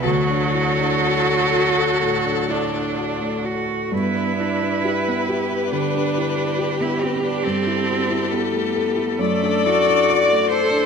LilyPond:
<<
  \new Staff \with { instrumentName = "Violin" } { \time 4/4 \key g \major \tempo 4 = 68 a'1 | b'1 | a'2 d''2 | }
  \new Staff \with { instrumentName = "Viola" } { \time 4/4 \key g \major fis2.~ fis8 r8 | b8 d'8 b'8 g'2~ g'8~ | g'2 a'4 d''8 c''8 | }
  \new Staff \with { instrumentName = "Grand piano" } { \time 4/4 \key g \major d,16 d'16 e'16 d'16 fis'16 a16 fis'16 a'16 a,16 d'16 e'16 d'16 fis'16 a16 fis'8 | g,16 d'16 e'16 d'16 g'16 b16 g'16 b'16 d16 d'16 e'16 d'16 g'16 b16 g'16 b'16 | g,16 e'16 fis'16 e'16 a'16 a16 a'16 e'16 fis,16 d'16 e'16 d'16 a'16 a16 a'16 d'16 | }
  \new Staff \with { instrumentName = "Cello" } { \time 4/4 \key g \major fis'2~ fis'8 d'4 fis'8 | e'2 d'4~ d'16 e'16 c'16 d'16 | c'4 b4 a8 fis'4 a'8 | }
>>